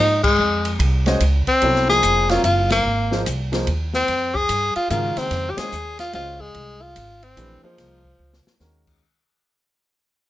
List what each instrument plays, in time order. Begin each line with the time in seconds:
Already playing: upright bass G#2, tenor saxophone D#4
0.23 tenor saxophone G#3, kick, crash
0.39 upright bass F2
0.65 ride
0.79 upright bass C2, ride
1.06 grand piano G#3 C#4 F#4 C5 D#5, snare, ride
1.20 upright bass C#2, hi-hat pedal, ride
1.47 tenor saxophone C4, muted upright bass stroke, kick, ride
1.62 upright bass C2, grand piano F#3 B3 E4 A4 C#5, ride
1.75 snare
1.89 grand piano F3 A#3 D#4 G#4 C5, tenor saxophone G#4, snare
2.03 upright bass F1, hi-hat pedal, ride
2.29 grand piano F#3 C4 F4 A#4 C#5, tenor saxophone F4, snare, ride
2.44 upright bass F#1, tenor saxophone F4, hi-hat pedal, ride
2.70 tenor saxophone A#3, snare, ride
2.85 upright bass G#1
3.11 grand piano F3 A#3 D#4 G#4 C5, snare
3.26 upright bass C2, hi-hat pedal, ride
3.52 grand piano F3 A#3 D#4 G#4 C5, snare, ride
3.67 upright bass D#2, ride
3.94 tenor saxophone C4, snare
4.08 upright bass F2, ride
4.35 tenor saxophone G#4, kick
4.49 upright bass G2, hi-hat pedal, ride
4.76 tenor saxophone F4, muted upright bass stroke, ride
4.90 upright bass G#2, grand piano C#3 D#3 G#3 F#4 A#4, tenor saxophone F4, hi-hat pedal, ride
5.17 tenor saxophone C4, muted upright bass stroke, snare, ride
5.31 upright bass F2, snare, ride
5.50 tenor saxophone G4
5.57 grand piano G#3 C#4 F#4 C5 D#5, tenor saxophone G#4, muted upright bass stroke, snare, ride
5.72 upright bass D#2, hi-hat pedal
5.99 tenor saxophone F4, snare, ride
6.13 upright bass C#2, grand piano G#3 C#4 F#4 C5 D#5, tenor saxophone F4, ride
6.40 tenor saxophone G#3, kick
6.55 upright bass C2, ride
6.81 tenor saxophone F4
6.96 upright bass G#1, hi-hat pedal, ride
7.23 tenor saxophone C4, ride
7.37 upright bass A#1, grand piano E3 A3 D4 G4 B4, hi-hat pedal, ride
7.63 grand piano F3 A#3 D#4 G#4 C5, tenor saxophone F3, muted upright bass stroke
7.78 upright bass C2, snare, ride
8.05 kick
8.19 upright bass C#2
8.33 snare
8.46 muted upright bass stroke, snare
8.60 upright bass D#2, grand piano D#3 G#3 C#4 F#4 A#4, snare, hi-hat pedal
8.87 kick, crash